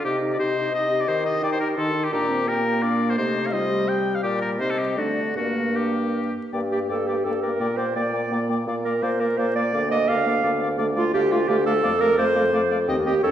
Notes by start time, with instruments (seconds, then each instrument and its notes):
0.03 bassoon C3, french horn D#4, clarinet G4, oboe G4, flute D#5
0.21 french horn D#4, clarinet G4
0.32 oboe D5
0.39 bassoon C3, french horn D#4, clarinet G4, oboe C5
0.56 french horn D#4, clarinet G4
0.73 bassoon C3, french horn D#4, clarinet G4, oboe D#5
0.90 french horn D#4, clarinet G4
1.00 oboe D5
1.07 bassoon D#3, french horn D#4, clarinet G4, oboe C5
1.25 french horn D#4, clarinet G4, oboe D#5
1.42 bassoon D#3, french horn D#4, clarinet G4, oboe D5, flute G5
1.52 oboe C5
1.59 french horn D#4, clarinet G4, oboe A#4
1.77 bassoon D#3, french horn D#4, clarinet G4, oboe A4, flute C6
1.94 french horn D#4, clarinet G4
2.04 oboe G4
2.11 bassoon A#2, french horn D4, oboe G4, clarinet A#4, flute A#5
2.29 french horn C4
2.47 french horn A#3, clarinet G4, oboe A#4, flute G5
2.82 clarinet D4, oboe D5, flute F5
3.10 oboe C5
3.17 bassoon C3, french horn A3, clarinet D#4, oboe C5, flute D#5
3.46 oboe F5
3.52 french horn G3, clarinet F4, flute C5, oboe D#5
3.71 clarinet G4
3.88 clarinet G4, oboe G5
4.15 oboe F5
4.23 bassoon A#2, oboe G4, flute D5
4.41 oboe A#4
4.59 bassoon C3, french horn C4, clarinet D#4, oboe C5, flute D#5
4.70 oboe A4
4.78 oboe G4
4.96 bassoon D3, french horn A3, clarinet D4, oboe F#4, flute D5
5.36 bassoon G2, french horn A#3, clarinet D4, oboe F#4, flute A#4
5.75 oboe G4
6.53 bassoon G2, french horn A#3, oboe D5, flute G5
6.71 french horn A#3, clarinet G4, oboe D5, flute G5
6.89 bassoon G2, french horn A#3, clarinet A4, oboe D5, flute G5
7.07 french horn A#3, clarinet G4, oboe D5, flute G5
7.24 bassoon G2, french horn A#3, clarinet A4, oboe D5, flute G5
7.42 french horn A#3, clarinet A#4, oboe D5, flute G5
7.60 bassoon A#2, french horn A#3, oboe D5, flute G5
7.77 french horn A#3, clarinet C5, oboe D5, flute G5
7.95 bassoon A#2, french horn A#3, clarinet D5, oboe D5, flute G5
8.13 french horn A#3, oboe D5, flute G5
8.31 bassoon A#2, french horn A#3, oboe D5, flute G5
8.49 french horn A#3, oboe D5, flute G5
8.67 bassoon A#2, french horn A#3, oboe D5, flute F5
8.84 french horn A#3, clarinet A#4, oboe D5, flute F5
9.02 bassoon A#2, french horn A#3, clarinet C5, oboe D5, flute F5
9.19 french horn A#3, clarinet A#4, oboe D5, flute F5
9.38 bassoon A#2, french horn A#3, clarinet C5, oboe D5, flute F5
9.55 french horn A#3, clarinet D5, oboe D5, flute F5
9.73 bassoon D2, french horn A#3, oboe D5, flute F5
9.91 french horn A#3, oboe D5, clarinet D#5, flute F5
10.08 bassoon D2, french horn A#3, oboe D5, clarinet F5, flute F5
10.26 french horn A#3, oboe D5, flute F5
10.43 bassoon D2, french horn A#3, oboe D5, flute F5
10.61 french horn A#3, oboe D5, flute F5
10.78 bassoon D2, french horn A3, oboe D5, flute F5
10.96 french horn A3, clarinet F4, oboe D5, flute F5
11.13 bassoon D2, french horn A3, clarinet G4, oboe D5, flute F5
11.31 french horn A3, clarinet F4, oboe D5, flute F5
11.48 bassoon D2, french horn A3, clarinet G4, oboe D5, flute F5
11.66 french horn A3, clarinet A4, oboe D5, flute F5
11.83 bassoon F2, french horn A3, oboe D5, flute F5
12.00 french horn A3, clarinet A#4, oboe D5, flute F5
12.17 bassoon F2, french horn A3, clarinet C5, oboe D5, flute F5
12.35 french horn A3, oboe D5, flute F5
12.53 bassoon F2, french horn A3, oboe D5, flute F5
12.71 french horn A3, oboe D5, flute F5
12.88 bassoon D#2, french horn C4, oboe D#5, flute G5
13.05 french horn C4, clarinet G4, oboe D#5, flute G5
13.23 bassoon D#2, french horn C#4, clarinet A4, oboe C#5, flute G5